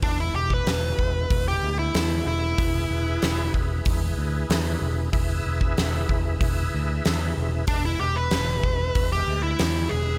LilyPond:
<<
  \new Staff \with { instrumentName = "Tonewheel organ" } { \time 4/4 \key e \mixolydian \tempo 4 = 94 <gis b e'>1 | <e' gis' b'>1 | <e' gis' b' e''>1 | <gis b' e''>1 | }
  \new Staff \with { instrumentName = "Lead electric guitar" } { \time 4/4 \key e \mixolydian d'16 e'16 g'16 b'4. g'8 e'8. e'8~ | e'4. r2 r8 | r1 | d'16 e'16 g'16 b'4. g'8 e'8. gis'8 | }
  \new Staff \with { instrumentName = "Picked electric bass" } { \clef bass \time 4/4 \key e \mixolydian e,,8 e,,8 e,,8 e,,8 e,,8 d,8 e,8 e,,8 | e,,8 e,,8 e,,8 e,,8 e,,8 d,8 e,8 e,,8 | e,,8 e,,8 e,,8 e,,8 e,,8 d,8 e,8 e,,8 | e,,8 e,,8 e,,8 e,,8 e,,8 d,8 e,8 e,,8 | }
  \new DrumStaff \with { instrumentName = "Drums" } \drummode { \time 4/4 <hho bd>8. bd16 <hho sn>8 bd8 <hho bd>4 <hho sn>4 | <hho bd>4 <hho sn>8 bd8 <hho bd>4 <hho sn>4 | <hho bd>8. bd16 <hho sn>8 bd8 <hho bd>4 <hho sn>4 | <hho bd>4 <hho sn>8 bd8 <hho bd>4 <hho sn>4 | }
>>